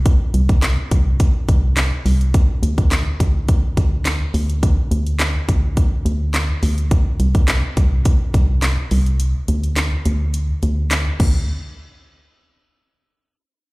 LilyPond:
<<
  \new Staff \with { instrumentName = "FM bass" } { \clef bass \time 4/4 \key c \mixolydian \tempo 4 = 105 c,8 c,4 c,4 c,4 c,8~ | c,8 d,4 d,4 d,4 d,8~ | d,8 d,4 d,4 d,4 d,8~ | d,8 c,4 c,4 c,4 c,8~ |
c,8 d,4 d,4 d,4 d,8 | r1 | }
  \new DrumStaff \with { instrumentName = "Drums" } \drummode { \time 4/4 <hh bd>8 hh16 <hh bd>16 <hc hh sn>8 <hh bd>8 <hh bd>8 <hh bd>8 <hc hh sn>8 hho16 hh16 | <hh bd>8 hh16 <hh bd>16 <hc hh sn>8 <hh bd>8 <hh bd>8 <hh bd>8 <hc hh sn>8 hho16 hh16 | <hh bd>8 hh16 hh16 <hc hh sn>8 <hh bd>8 <hh bd>8 hh8 <hc hh sn>8 hho16 hh16 | <hh bd>8 hh16 <hh bd>16 <hc hh sn>8 <hh bd>8 <hh bd>8 <hh bd>8 <hc hh sn>8 hho16 hh16 |
hh8 hh16 hh16 <hc hh sn>8 hh8 hh8 hh8 <hc hh sn>8 <cymc bd>8 | r4 r4 r4 r4 | }
>>